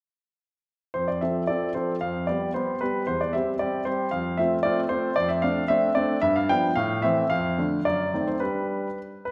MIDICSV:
0, 0, Header, 1, 2, 480
1, 0, Start_track
1, 0, Tempo, 544959
1, 831, Time_signature, 2, 2, 24, 8
1, 1782, Tempo, 526316
1, 5622, Tempo, 542495
1, 7062, Tempo, 562324
1, 8304, End_track
2, 0, Start_track
2, 0, Title_t, "Grand piano"
2, 0, Program_c, 0, 0
2, 827, Note_on_c, 0, 72, 60
2, 838, Note_on_c, 0, 41, 41
2, 949, Note_on_c, 0, 74, 48
2, 950, Note_off_c, 0, 72, 0
2, 1068, Note_off_c, 0, 41, 0
2, 1068, Note_on_c, 0, 76, 50
2, 1071, Note_off_c, 0, 74, 0
2, 1079, Note_on_c, 0, 53, 30
2, 1080, Note_on_c, 0, 60, 32
2, 1083, Note_on_c, 0, 69, 35
2, 1248, Note_off_c, 0, 53, 0
2, 1249, Note_off_c, 0, 60, 0
2, 1251, Note_off_c, 0, 69, 0
2, 1298, Note_on_c, 0, 74, 60
2, 1308, Note_off_c, 0, 76, 0
2, 1309, Note_on_c, 0, 53, 33
2, 1311, Note_on_c, 0, 60, 35
2, 1317, Note_on_c, 0, 69, 37
2, 1480, Note_off_c, 0, 53, 0
2, 1481, Note_off_c, 0, 60, 0
2, 1484, Note_off_c, 0, 69, 0
2, 1516, Note_off_c, 0, 74, 0
2, 1537, Note_on_c, 0, 72, 51
2, 1549, Note_on_c, 0, 53, 33
2, 1549, Note_on_c, 0, 60, 33
2, 1555, Note_on_c, 0, 69, 37
2, 1680, Note_off_c, 0, 72, 0
2, 1717, Note_off_c, 0, 53, 0
2, 1717, Note_off_c, 0, 60, 0
2, 1721, Note_off_c, 0, 69, 0
2, 1769, Note_on_c, 0, 77, 64
2, 1776, Note_on_c, 0, 41, 47
2, 1992, Note_off_c, 0, 77, 0
2, 2008, Note_on_c, 0, 74, 55
2, 2013, Note_off_c, 0, 41, 0
2, 2019, Note_on_c, 0, 55, 32
2, 2023, Note_on_c, 0, 59, 30
2, 2029, Note_on_c, 0, 67, 36
2, 2196, Note_off_c, 0, 55, 0
2, 2198, Note_off_c, 0, 59, 0
2, 2202, Note_off_c, 0, 67, 0
2, 2233, Note_off_c, 0, 74, 0
2, 2255, Note_on_c, 0, 72, 56
2, 2264, Note_on_c, 0, 55, 38
2, 2270, Note_on_c, 0, 59, 37
2, 2271, Note_on_c, 0, 67, 38
2, 2439, Note_off_c, 0, 55, 0
2, 2443, Note_off_c, 0, 59, 0
2, 2444, Note_off_c, 0, 67, 0
2, 2497, Note_on_c, 0, 71, 55
2, 2503, Note_off_c, 0, 72, 0
2, 2509, Note_on_c, 0, 55, 35
2, 2513, Note_on_c, 0, 59, 35
2, 2516, Note_on_c, 0, 67, 35
2, 2681, Note_off_c, 0, 55, 0
2, 2684, Note_off_c, 0, 59, 0
2, 2685, Note_off_c, 0, 67, 0
2, 2718, Note_off_c, 0, 71, 0
2, 2736, Note_on_c, 0, 72, 65
2, 2744, Note_on_c, 0, 40, 46
2, 2861, Note_off_c, 0, 72, 0
2, 2862, Note_on_c, 0, 74, 53
2, 2974, Note_on_c, 0, 76, 56
2, 2976, Note_off_c, 0, 40, 0
2, 2983, Note_off_c, 0, 74, 0
2, 2987, Note_on_c, 0, 55, 31
2, 2992, Note_on_c, 0, 60, 34
2, 2996, Note_on_c, 0, 67, 38
2, 3120, Note_off_c, 0, 76, 0
2, 3158, Note_off_c, 0, 55, 0
2, 3161, Note_off_c, 0, 60, 0
2, 3163, Note_off_c, 0, 67, 0
2, 3214, Note_on_c, 0, 74, 60
2, 3222, Note_on_c, 0, 55, 38
2, 3224, Note_on_c, 0, 60, 37
2, 3229, Note_on_c, 0, 67, 41
2, 3394, Note_off_c, 0, 55, 0
2, 3395, Note_off_c, 0, 60, 0
2, 3398, Note_off_c, 0, 67, 0
2, 3449, Note_on_c, 0, 72, 61
2, 3456, Note_off_c, 0, 74, 0
2, 3459, Note_on_c, 0, 55, 36
2, 3461, Note_on_c, 0, 60, 36
2, 3467, Note_on_c, 0, 67, 41
2, 3631, Note_off_c, 0, 55, 0
2, 3632, Note_off_c, 0, 60, 0
2, 3636, Note_off_c, 0, 67, 0
2, 3669, Note_off_c, 0, 72, 0
2, 3687, Note_on_c, 0, 77, 66
2, 3697, Note_on_c, 0, 41, 52
2, 3927, Note_on_c, 0, 76, 64
2, 3929, Note_off_c, 0, 41, 0
2, 3931, Note_off_c, 0, 77, 0
2, 3938, Note_on_c, 0, 57, 37
2, 3940, Note_on_c, 0, 60, 40
2, 3943, Note_on_c, 0, 65, 43
2, 4072, Note_off_c, 0, 76, 0
2, 4108, Note_off_c, 0, 57, 0
2, 4110, Note_off_c, 0, 60, 0
2, 4111, Note_off_c, 0, 65, 0
2, 4158, Note_on_c, 0, 74, 71
2, 4171, Note_on_c, 0, 57, 44
2, 4171, Note_on_c, 0, 60, 43
2, 4178, Note_on_c, 0, 65, 46
2, 4306, Note_off_c, 0, 74, 0
2, 4343, Note_off_c, 0, 57, 0
2, 4343, Note_off_c, 0, 60, 0
2, 4348, Note_off_c, 0, 65, 0
2, 4396, Note_on_c, 0, 72, 72
2, 4405, Note_on_c, 0, 57, 40
2, 4410, Note_on_c, 0, 60, 42
2, 4414, Note_on_c, 0, 65, 45
2, 4580, Note_off_c, 0, 57, 0
2, 4583, Note_off_c, 0, 60, 0
2, 4585, Note_off_c, 0, 65, 0
2, 4640, Note_on_c, 0, 74, 82
2, 4643, Note_off_c, 0, 72, 0
2, 4648, Note_on_c, 0, 41, 56
2, 4758, Note_on_c, 0, 76, 61
2, 4766, Note_off_c, 0, 74, 0
2, 4880, Note_on_c, 0, 77, 73
2, 4883, Note_off_c, 0, 41, 0
2, 4885, Note_off_c, 0, 76, 0
2, 4890, Note_on_c, 0, 57, 41
2, 4895, Note_on_c, 0, 60, 42
2, 4899, Note_on_c, 0, 62, 47
2, 5064, Note_off_c, 0, 57, 0
2, 5067, Note_off_c, 0, 60, 0
2, 5070, Note_off_c, 0, 62, 0
2, 5102, Note_off_c, 0, 77, 0
2, 5120, Note_on_c, 0, 76, 81
2, 5131, Note_on_c, 0, 57, 45
2, 5133, Note_on_c, 0, 60, 46
2, 5136, Note_on_c, 0, 62, 49
2, 5306, Note_off_c, 0, 57, 0
2, 5308, Note_off_c, 0, 60, 0
2, 5309, Note_off_c, 0, 62, 0
2, 5344, Note_off_c, 0, 76, 0
2, 5362, Note_on_c, 0, 74, 73
2, 5372, Note_on_c, 0, 57, 43
2, 5376, Note_on_c, 0, 60, 42
2, 5380, Note_on_c, 0, 62, 45
2, 5550, Note_off_c, 0, 57, 0
2, 5552, Note_off_c, 0, 60, 0
2, 5555, Note_off_c, 0, 62, 0
2, 5589, Note_off_c, 0, 74, 0
2, 5605, Note_on_c, 0, 76, 84
2, 5615, Note_on_c, 0, 43, 61
2, 5731, Note_on_c, 0, 77, 67
2, 5733, Note_off_c, 0, 76, 0
2, 5851, Note_off_c, 0, 43, 0
2, 5852, Note_on_c, 0, 79, 81
2, 5856, Note_off_c, 0, 77, 0
2, 5859, Note_on_c, 0, 53, 43
2, 5862, Note_on_c, 0, 59, 44
2, 5868, Note_on_c, 0, 62, 46
2, 6032, Note_off_c, 0, 53, 0
2, 6033, Note_off_c, 0, 59, 0
2, 6037, Note_off_c, 0, 62, 0
2, 6071, Note_off_c, 0, 79, 0
2, 6084, Note_on_c, 0, 77, 80
2, 6094, Note_on_c, 0, 45, 64
2, 6303, Note_off_c, 0, 77, 0
2, 6321, Note_on_c, 0, 76, 80
2, 6326, Note_off_c, 0, 45, 0
2, 6330, Note_on_c, 0, 52, 46
2, 6334, Note_on_c, 0, 57, 46
2, 6336, Note_on_c, 0, 60, 48
2, 6504, Note_off_c, 0, 52, 0
2, 6506, Note_off_c, 0, 57, 0
2, 6507, Note_off_c, 0, 60, 0
2, 6562, Note_on_c, 0, 77, 78
2, 6566, Note_off_c, 0, 76, 0
2, 6574, Note_on_c, 0, 41, 61
2, 6809, Note_off_c, 0, 41, 0
2, 6813, Note_on_c, 0, 50, 39
2, 6817, Note_on_c, 0, 57, 38
2, 6823, Note_on_c, 0, 62, 40
2, 6990, Note_off_c, 0, 50, 0
2, 6992, Note_off_c, 0, 57, 0
2, 6996, Note_off_c, 0, 62, 0
2, 7054, Note_on_c, 0, 74, 72
2, 7055, Note_off_c, 0, 77, 0
2, 7061, Note_on_c, 0, 42, 54
2, 7290, Note_off_c, 0, 42, 0
2, 7300, Note_on_c, 0, 51, 38
2, 7302, Note_on_c, 0, 57, 38
2, 7303, Note_on_c, 0, 60, 40
2, 7413, Note_off_c, 0, 74, 0
2, 7413, Note_on_c, 0, 72, 47
2, 7472, Note_off_c, 0, 51, 0
2, 7472, Note_off_c, 0, 57, 0
2, 7474, Note_off_c, 0, 60, 0
2, 7522, Note_on_c, 0, 71, 53
2, 7529, Note_on_c, 0, 55, 41
2, 7531, Note_on_c, 0, 62, 35
2, 7535, Note_off_c, 0, 72, 0
2, 7919, Note_off_c, 0, 55, 0
2, 7920, Note_off_c, 0, 62, 0
2, 8013, Note_off_c, 0, 71, 0
2, 8250, Note_on_c, 0, 71, 52
2, 8304, Note_off_c, 0, 71, 0
2, 8304, End_track
0, 0, End_of_file